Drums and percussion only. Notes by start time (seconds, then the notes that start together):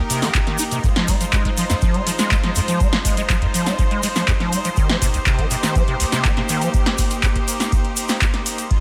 0.10 open hi-hat, ride, shaker
0.22 snare, open hi-hat, shaker
0.34 kick, clap, ride, shaker
0.47 snare, closed hi-hat
0.58 open hi-hat, ride, shaker
0.71 closed hi-hat, shaker
0.84 kick, ride, shaker
0.96 snare, closed hi-hat
1.08 kick, open hi-hat, ride, shaker
1.21 closed hi-hat, shaker
1.33 kick, clap, ride, shaker
1.45 kick, closed hi-hat
1.57 open hi-hat, ride, shaker
1.70 snare, closed hi-hat, shaker
1.81 kick, ride, shaker
1.94 closed hi-hat
2.07 open hi-hat, ride, shaker
2.19 snare, closed hi-hat, shaker
2.31 kick, clap, ride, shaker
2.44 snare, closed hi-hat
2.55 open hi-hat, ride, shaker
2.68 closed hi-hat, shaker
2.80 kick, ride, shaker
2.93 snare, closed hi-hat
3.05 kick, open hi-hat, ride, shaker
3.17 closed hi-hat, shaker
3.29 kick, clap, ride, shaker
3.42 kick, closed hi-hat
3.54 open hi-hat, ride, shaker
3.66 snare, closed hi-hat, shaker
3.79 kick, ride, shaker
3.91 closed hi-hat
4.03 open hi-hat, ride, shaker
4.16 snare, open hi-hat, shaker
4.28 kick, clap, ride, shaker
4.40 snare, closed hi-hat
4.53 open hi-hat, ride, shaker
4.64 closed hi-hat, shaker
4.76 kick, ride, shaker
4.89 snare, closed hi-hat
5.02 kick, open hi-hat, ride, shaker
5.14 closed hi-hat, shaker
5.26 kick, clap, ride, shaker
5.39 kick, closed hi-hat
5.51 open hi-hat, ride, shaker
5.63 snare, closed hi-hat, shaker
5.75 kick, ride, shaker
5.88 closed hi-hat
6.00 open hi-hat, ride, shaker
6.12 snare, closed hi-hat, shaker
6.25 kick, clap, ride, shaker
6.37 snare, closed hi-hat
6.49 open hi-hat, ride, shaker
6.62 closed hi-hat, shaker
6.74 kick, ride, shaker
6.86 snare, closed hi-hat
6.98 kick, open hi-hat, ride, shaker
7.10 closed hi-hat, shaker
7.23 kick, clap, ride, shaker
7.35 kick, closed hi-hat
7.48 open hi-hat, ride, shaker
7.60 snare, closed hi-hat, shaker
7.72 kick, ride, shaker
7.85 closed hi-hat
7.96 open hi-hat, ride, shaker
8.09 snare, open hi-hat, shaker
8.21 kick, clap, ride, shaker
8.34 snare, closed hi-hat
8.46 open hi-hat, ride, shaker
8.58 closed hi-hat, shaker
8.71 kick, ride